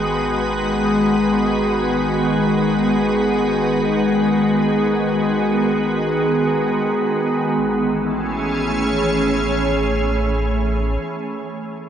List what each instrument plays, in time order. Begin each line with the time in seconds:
Already playing: sub bass G#1, ambient pad D#3 G#3 B3 F#4 B4, glass harmonica G#4 G#5
7.57 sub bass A1, ambient pad E3
7.72 ambient pad A3
7.83 ambient pad C#4
7.95 ambient pad G#4
8.12 ambient pad C#5